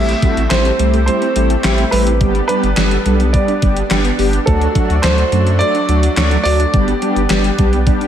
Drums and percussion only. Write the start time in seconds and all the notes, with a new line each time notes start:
0.09 closed hi-hat
0.22 kick, closed hi-hat
0.37 closed hi-hat
0.51 snare, clap, closed hi-hat
0.65 closed hi-hat
0.79 closed hi-hat
0.94 closed hi-hat
1.08 closed hi-hat
1.22 closed hi-hat
1.36 closed hi-hat
1.50 closed hi-hat
1.64 snare, clap, closed hi-hat
1.78 closed hi-hat
1.92 open hi-hat
2.07 closed hi-hat
2.21 kick, closed hi-hat
2.35 closed hi-hat
2.49 closed hi-hat
2.63 closed hi-hat
2.77 snare, clap, closed hi-hat
2.91 closed hi-hat
3.06 closed hi-hat
3.20 closed hi-hat
3.34 kick, closed hi-hat
3.48 closed hi-hat
3.62 kick, closed hi-hat
3.76 closed hi-hat
3.91 snare, clap, closed hi-hat
4.05 closed hi-hat
4.19 open hi-hat
4.33 closed hi-hat
4.47 kick, closed hi-hat
4.61 closed hi-hat
4.75 kick, closed hi-hat
4.90 closed hi-hat
5.04 snare, clap, closed hi-hat
5.18 closed hi-hat
5.32 closed hi-hat
5.47 closed hi-hat
5.61 closed hi-hat
5.75 closed hi-hat
5.89 closed hi-hat
6.03 closed hi-hat
6.17 snare, clap, closed hi-hat
6.31 closed hi-hat
6.45 open hi-hat
6.60 closed hi-hat
6.74 kick, closed hi-hat
6.88 closed hi-hat
7.02 closed hi-hat
7.16 closed hi-hat
7.30 snare, clap, closed hi-hat
7.44 closed hi-hat
7.58 kick, closed hi-hat
7.73 closed hi-hat
7.87 kick, closed hi-hat
8.01 closed hi-hat